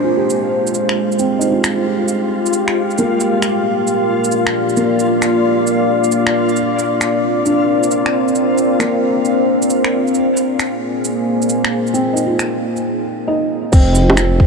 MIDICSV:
0, 0, Header, 1, 6, 480
1, 0, Start_track
1, 0, Tempo, 447761
1, 1277, Time_signature, 4, 2, 24, 8
1, 15510, End_track
2, 0, Start_track
2, 0, Title_t, "Synth texture"
2, 0, Program_c, 0, 99
2, 0, Note_on_c, 0, 65, 86
2, 0, Note_on_c, 0, 77, 81
2, 13751, Note_off_c, 0, 65, 0
2, 13751, Note_off_c, 0, 77, 0
2, 14713, Note_on_c, 0, 72, 94
2, 14721, Note_on_c, 0, 60, 92
2, 15510, Note_off_c, 0, 60, 0
2, 15510, Note_off_c, 0, 72, 0
2, 15510, End_track
3, 0, Start_track
3, 0, Title_t, "Ambient pad"
3, 0, Program_c, 1, 92
3, 0, Note_on_c, 1, 56, 65
3, 0, Note_on_c, 1, 58, 85
3, 0, Note_on_c, 1, 67, 78
3, 0, Note_on_c, 1, 72, 70
3, 0, Note_on_c, 1, 77, 87
3, 921, Note_off_c, 1, 58, 0
3, 3193, Note_off_c, 1, 56, 0
3, 3204, Note_on_c, 1, 58, 87
3, 3333, Note_on_c, 1, 65, 65
3, 3694, Note_on_c, 1, 74, 86
3, 4279, Note_off_c, 1, 72, 0
3, 7036, Note_on_c, 1, 60, 81
3, 7479, Note_on_c, 1, 70, 73
3, 7879, Note_off_c, 1, 67, 0
3, 7952, Note_off_c, 1, 65, 0
3, 8609, Note_off_c, 1, 58, 0
3, 10875, Note_on_c, 1, 58, 80
3, 11086, Note_on_c, 1, 68, 87
3, 11574, Note_on_c, 1, 72, 67
3, 11720, Note_off_c, 1, 70, 0
3, 12069, Note_off_c, 1, 60, 0
3, 12446, Note_off_c, 1, 74, 0
3, 13752, Note_off_c, 1, 77, 0
3, 13755, Note_off_c, 1, 68, 0
3, 13756, Note_off_c, 1, 58, 0
3, 13762, Note_off_c, 1, 72, 0
3, 14720, Note_on_c, 1, 56, 99
3, 15011, Note_on_c, 1, 67, 89
3, 15510, Note_off_c, 1, 56, 0
3, 15510, Note_off_c, 1, 67, 0
3, 15510, End_track
4, 0, Start_track
4, 0, Title_t, "Felt piano"
4, 0, Program_c, 2, 0
4, 0, Control_c, 2, 64, 127
4, 0, Note_on_c, 2, 62, 68
4, 0, Note_on_c, 2, 65, 70
4, 44, Note_off_c, 2, 65, 0
4, 44, Note_on_c, 2, 65, 50
4, 183, Note_on_c, 2, 67, 50
4, 668, Note_off_c, 2, 62, 0
4, 774, Note_off_c, 2, 65, 0
4, 960, Note_off_c, 2, 67, 0
4, 1276, Note_on_c, 2, 60, 50
4, 1491, Note_on_c, 2, 63, 51
4, 1622, Note_on_c, 2, 65, 48
4, 2107, Note_off_c, 2, 60, 0
4, 2217, Note_off_c, 2, 63, 0
4, 2400, Note_off_c, 2, 65, 0
4, 3200, Note_on_c, 2, 58, 59
4, 3209, Control_c, 2, 64, 0
4, 3382, Control_c, 2, 64, 127
4, 4029, Note_off_c, 2, 58, 0
4, 5112, Note_on_c, 2, 58, 52
4, 5945, Note_off_c, 2, 58, 0
4, 7050, Control_c, 2, 64, 0
4, 7215, Control_c, 2, 64, 127
4, 7989, Note_on_c, 2, 62, 51
4, 8823, Note_off_c, 2, 62, 0
4, 9428, Note_on_c, 2, 58, 61
4, 10263, Note_off_c, 2, 58, 0
4, 10891, Control_c, 2, 64, 0
4, 11053, Control_c, 2, 64, 127
4, 12796, Note_on_c, 2, 60, 65
4, 13007, Note_on_c, 2, 63, 51
4, 13147, Note_on_c, 2, 65, 48
4, 13627, Note_off_c, 2, 60, 0
4, 13735, Note_off_c, 2, 63, 0
4, 13923, Note_off_c, 2, 65, 0
4, 14232, Note_on_c, 2, 63, 68
4, 14710, Note_on_c, 2, 60, 84
4, 14728, Control_c, 2, 64, 0
4, 14892, Control_c, 2, 64, 127
4, 14905, Note_off_c, 2, 63, 0
4, 14921, Note_on_c, 2, 63, 56
4, 15051, Note_on_c, 2, 65, 55
4, 15171, Note_off_c, 2, 65, 0
4, 15187, Note_on_c, 2, 65, 63
4, 15510, Note_off_c, 2, 60, 0
4, 15510, Note_off_c, 2, 63, 0
4, 15510, Note_off_c, 2, 65, 0
4, 15510, End_track
5, 0, Start_track
5, 0, Title_t, "Detuned saw bass"
5, 0, Program_c, 3, 39
5, 14719, Note_on_c, 3, 29, 106
5, 15510, Note_off_c, 3, 29, 0
5, 15510, End_track
6, 0, Start_track
6, 0, Title_t, "Drums"
6, 320, Note_on_c, 9, 82, 47
6, 427, Note_off_c, 9, 82, 0
6, 717, Note_on_c, 9, 82, 49
6, 796, Note_off_c, 9, 82, 0
6, 796, Note_on_c, 9, 82, 51
6, 903, Note_off_c, 9, 82, 0
6, 957, Note_on_c, 9, 26, 97
6, 1064, Note_off_c, 9, 26, 0
6, 1199, Note_on_c, 9, 82, 26
6, 1275, Note_off_c, 9, 82, 0
6, 1275, Note_on_c, 9, 82, 50
6, 1382, Note_off_c, 9, 82, 0
6, 1515, Note_on_c, 9, 82, 53
6, 1622, Note_off_c, 9, 82, 0
6, 1757, Note_on_c, 9, 26, 102
6, 1757, Note_on_c, 9, 82, 53
6, 1865, Note_off_c, 9, 26, 0
6, 1865, Note_off_c, 9, 82, 0
6, 2231, Note_on_c, 9, 82, 51
6, 2338, Note_off_c, 9, 82, 0
6, 2636, Note_on_c, 9, 82, 47
6, 2714, Note_off_c, 9, 82, 0
6, 2714, Note_on_c, 9, 82, 55
6, 2821, Note_off_c, 9, 82, 0
6, 2871, Note_on_c, 9, 26, 96
6, 2978, Note_off_c, 9, 26, 0
6, 3115, Note_on_c, 9, 82, 28
6, 3194, Note_off_c, 9, 82, 0
6, 3194, Note_on_c, 9, 82, 47
6, 3302, Note_off_c, 9, 82, 0
6, 3433, Note_on_c, 9, 82, 52
6, 3540, Note_off_c, 9, 82, 0
6, 3671, Note_on_c, 9, 26, 94
6, 3671, Note_on_c, 9, 82, 51
6, 3778, Note_off_c, 9, 26, 0
6, 3778, Note_off_c, 9, 82, 0
6, 4150, Note_on_c, 9, 82, 47
6, 4258, Note_off_c, 9, 82, 0
6, 4548, Note_on_c, 9, 82, 50
6, 4626, Note_off_c, 9, 82, 0
6, 4626, Note_on_c, 9, 82, 52
6, 4733, Note_off_c, 9, 82, 0
6, 4787, Note_on_c, 9, 26, 101
6, 4895, Note_off_c, 9, 26, 0
6, 5031, Note_on_c, 9, 82, 28
6, 5111, Note_off_c, 9, 82, 0
6, 5111, Note_on_c, 9, 82, 48
6, 5218, Note_off_c, 9, 82, 0
6, 5354, Note_on_c, 9, 82, 50
6, 5461, Note_off_c, 9, 82, 0
6, 5596, Note_on_c, 9, 26, 96
6, 5596, Note_on_c, 9, 82, 49
6, 5703, Note_off_c, 9, 26, 0
6, 5703, Note_off_c, 9, 82, 0
6, 6076, Note_on_c, 9, 82, 49
6, 6183, Note_off_c, 9, 82, 0
6, 6472, Note_on_c, 9, 82, 45
6, 6556, Note_off_c, 9, 82, 0
6, 6556, Note_on_c, 9, 82, 49
6, 6663, Note_off_c, 9, 82, 0
6, 6717, Note_on_c, 9, 26, 100
6, 6824, Note_off_c, 9, 26, 0
6, 6956, Note_on_c, 9, 82, 27
6, 7034, Note_off_c, 9, 82, 0
6, 7034, Note_on_c, 9, 82, 46
6, 7142, Note_off_c, 9, 82, 0
6, 7277, Note_on_c, 9, 82, 51
6, 7384, Note_off_c, 9, 82, 0
6, 7515, Note_on_c, 9, 26, 91
6, 7515, Note_on_c, 9, 82, 49
6, 7622, Note_off_c, 9, 26, 0
6, 7622, Note_off_c, 9, 82, 0
6, 7995, Note_on_c, 9, 82, 45
6, 8102, Note_off_c, 9, 82, 0
6, 8396, Note_on_c, 9, 82, 47
6, 8480, Note_off_c, 9, 82, 0
6, 8480, Note_on_c, 9, 82, 51
6, 8587, Note_off_c, 9, 82, 0
6, 8640, Note_on_c, 9, 26, 95
6, 8747, Note_off_c, 9, 26, 0
6, 8878, Note_on_c, 9, 82, 26
6, 8953, Note_off_c, 9, 82, 0
6, 8953, Note_on_c, 9, 82, 45
6, 9060, Note_off_c, 9, 82, 0
6, 9196, Note_on_c, 9, 82, 48
6, 9303, Note_off_c, 9, 82, 0
6, 9435, Note_on_c, 9, 26, 97
6, 9435, Note_on_c, 9, 82, 48
6, 9542, Note_off_c, 9, 26, 0
6, 9542, Note_off_c, 9, 82, 0
6, 9916, Note_on_c, 9, 82, 44
6, 10024, Note_off_c, 9, 82, 0
6, 10315, Note_on_c, 9, 82, 49
6, 10397, Note_off_c, 9, 82, 0
6, 10397, Note_on_c, 9, 82, 50
6, 10504, Note_off_c, 9, 82, 0
6, 10553, Note_on_c, 9, 26, 92
6, 10661, Note_off_c, 9, 26, 0
6, 10799, Note_on_c, 9, 82, 25
6, 10874, Note_off_c, 9, 82, 0
6, 10874, Note_on_c, 9, 82, 46
6, 10982, Note_off_c, 9, 82, 0
6, 11115, Note_on_c, 9, 82, 51
6, 11222, Note_off_c, 9, 82, 0
6, 11358, Note_on_c, 9, 26, 94
6, 11358, Note_on_c, 9, 82, 50
6, 11465, Note_off_c, 9, 26, 0
6, 11465, Note_off_c, 9, 82, 0
6, 11840, Note_on_c, 9, 82, 50
6, 11947, Note_off_c, 9, 82, 0
6, 12242, Note_on_c, 9, 82, 46
6, 12321, Note_off_c, 9, 82, 0
6, 12321, Note_on_c, 9, 82, 51
6, 12428, Note_off_c, 9, 82, 0
6, 12483, Note_on_c, 9, 26, 92
6, 12591, Note_off_c, 9, 26, 0
6, 12723, Note_on_c, 9, 82, 26
6, 12804, Note_off_c, 9, 82, 0
6, 12804, Note_on_c, 9, 82, 50
6, 12911, Note_off_c, 9, 82, 0
6, 13046, Note_on_c, 9, 82, 55
6, 13153, Note_off_c, 9, 82, 0
6, 13286, Note_on_c, 9, 26, 93
6, 13286, Note_on_c, 9, 82, 53
6, 13393, Note_off_c, 9, 26, 0
6, 13393, Note_off_c, 9, 82, 0
6, 13685, Note_on_c, 9, 82, 26
6, 13792, Note_off_c, 9, 82, 0
6, 14715, Note_on_c, 9, 49, 99
6, 14715, Note_on_c, 9, 82, 56
6, 14716, Note_on_c, 9, 36, 117
6, 14822, Note_off_c, 9, 49, 0
6, 14822, Note_off_c, 9, 82, 0
6, 14824, Note_off_c, 9, 36, 0
6, 14955, Note_on_c, 9, 82, 61
6, 15062, Note_off_c, 9, 82, 0
6, 15112, Note_on_c, 9, 61, 65
6, 15192, Note_on_c, 9, 26, 107
6, 15192, Note_on_c, 9, 82, 58
6, 15219, Note_off_c, 9, 61, 0
6, 15300, Note_off_c, 9, 26, 0
6, 15300, Note_off_c, 9, 82, 0
6, 15435, Note_on_c, 9, 36, 60
6, 15510, Note_off_c, 9, 36, 0
6, 15510, End_track
0, 0, End_of_file